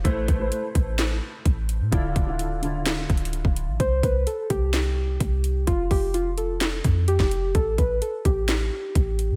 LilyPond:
<<
  \new Staff \with { instrumentName = "Synth keys" } { \time 4/4 \key c \major \tempo 4 = 128 r1 | r1 | c''8 b'8 a'8 g'2~ g'8 | f'8 g'8 f'8 a'4. g'4 |
a'8 b'8 a'8 g'2~ g'8 | }
  \new Staff \with { instrumentName = "Grand piano" } { \time 4/4 \key c \major <a e' b' c''>8 r16 <a e' b' c''>4. r4. r16 | <d d' e' f'>8 r16 <d d' e' f'>8 r16 <d d' e' f'>4. r4 | r1 | r1 |
r1 | }
  \new Staff \with { instrumentName = "808-style bass" } { \clef bass \time 4/4 \key c \major a,,8 a,,8 r8 a,,4 r8 a,,8. a,16 | d,,8 d,,2 d,,8. d,,8 a,,16 | c,8 c,8 r8 c,4. c,4 | f,,8 f,,2 f,8. f,,8. |
a,,8 a,,8 r8 a,,4 r8 a,,8. a,16 | }
  \new DrumStaff \with { instrumentName = "Drums" } \drummode { \time 4/4 <hh bd>8 <hh bd>8 hh8 <hh bd>8 <hc hh sn>4 <hh bd>8 hh8 | <hh bd>8 <hh bd>8 hh8 hh8 \tuplet 3/2 { <hc hh sn>16 r16 r16 <hh bd>16 hh16 hh16 } hh16 bd16 hh8 | <hh bd>8 <hh bd>8 hh8 <hh bd>8 <hc hh sn>4 <hh bd>8 hh8 | <hh bd>8 <hho bd>8 hh8 hh8 <hc hh sn>8 <hh bd>8 hh16 <bd sn>16 hh8 |
<hh bd>8 <hh bd>8 hh8 <hh bd>8 <hc hh sn>4 <hh bd>8 hh8 | }
>>